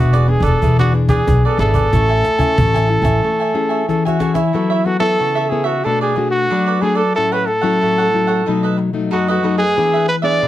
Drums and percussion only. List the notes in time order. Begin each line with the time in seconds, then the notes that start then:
0.14 cajon slap
0.42 cajon bass, cajon slap
0.62 cajon bass
0.79 cajon slap
0.93 cajon slap
1.08 cajon bass, cajon slap
1.28 cajon bass, cajon slap
1.59 cajon slap
1.74 cajon bass
1.93 cajon bass, cajon slap
2.25 cajon slap
2.39 cajon bass
2.58 cajon bass, cajon slap
2.75 cajon slap
3.04 cajon bass, cajon slap
3.89 cajon slap
4.07 cajon slap
4.20 cajon slap
4.35 cajon slap